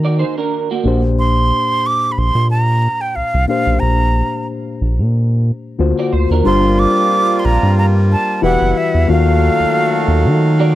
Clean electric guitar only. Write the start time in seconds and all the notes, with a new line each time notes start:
0.05 F#4 D5
0.19 D#4 C5
0.38 D4 A#4
0.71 A#3 F#4
5.99 F#4 D5
6.13 C5
6.31 D4 A#4
10.60 F#4 D5